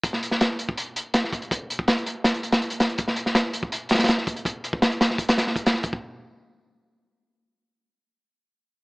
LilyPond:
\new DrumStaff \with { instrumentName = "Drums" } \drummode { \time 4/4 \tempo 4 = 163 <hh bd>16 sn16 hh16 sn16 <hh sn>8 hh16 bd16 hh8 hh8 <hh sn>16 sn16 <hh bd>16 hh16 | <hh bd>8 hh16 bd16 <hh sn>16 hh16 hh8 <hh sn>16 hh16 hh16 <hh sn>16 hh16 hh16 <hh sn>16 hh16 | <hh bd>16 sn16 hh16 sn16 <hh sn>8 hh16 bd16 hh8 <hh sn>32 <hh sn>32 <hh sn>32 <hh sn>32 <hh sn>16 sn16 <hh bd>16 hh16 | <hh bd>8 hh16 bd16 <hh sn>16 hh16 <hh sn>16 sn16 <hh bd>16 <hh sn>16 <hh sn>16 sn16 <hh bd>16 <hh sn>16 sn16 <hh bd>16 |
bd4 r4 r4 r4 | r4 r4 r4 r4 | }